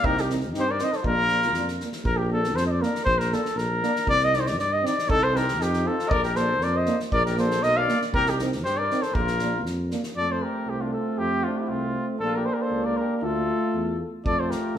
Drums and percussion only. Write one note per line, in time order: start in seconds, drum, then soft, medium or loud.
0.04 kick loud
0.17 snare soft
0.30 snare soft
0.41 snare soft
0.54 snare soft
0.79 snare soft
0.92 snare soft
1.04 kick medium
1.28 snare soft
1.42 snare soft
1.54 snare soft
1.68 snare soft
1.80 snare soft
1.92 snare soft
2.05 kick loud
2.44 snare soft
2.57 snare soft
2.83 snare soft
2.95 snare soft
3.07 kick loud
3.20 snare soft
3.32 snare soft
3.45 snare soft
3.58 snare soft
3.83 snare soft
3.96 snare soft
4.07 kick medium
4.19 snare soft
4.33 snare soft
4.46 snare soft
4.59 snare soft
4.86 snare soft
4.98 snare soft
5.10 kick loud
5.36 snare soft
5.48 snare soft
5.61 snare soft
5.73 snare soft
5.99 snare soft
6.11 kick loud
6.23 snare soft
6.36 snare soft
6.61 snare soft
6.86 snare soft
7.00 snare soft
7.12 kick medium
7.26 snare soft
7.37 snare soft
7.51 snare soft
7.63 snare soft
7.88 snare soft
8.02 snare soft
8.14 kick loud
8.26 snare soft
8.39 snare soft
8.52 snare soft
8.65 snare soft
8.91 snare soft
9.02 snare soft
9.15 kick loud
9.27 snare soft
9.39 snare soft
9.66 snare soft
9.91 snare soft
10.03 snare soft
14.26 kick medium
14.51 snare soft